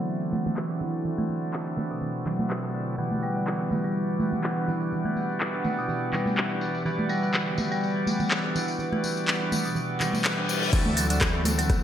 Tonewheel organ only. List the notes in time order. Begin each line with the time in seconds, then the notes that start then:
Already playing: C4 E4 F#4 A4 D5
2.98 B3 E4 F#4 G4 D5
6.86 B3 E4 F#4 G4 D5
10.73 C4 E4 F#4 A4 D5
11.10 C4 E4 F#4 A4 D5
11.45 C4 E4 F#4 A4 D5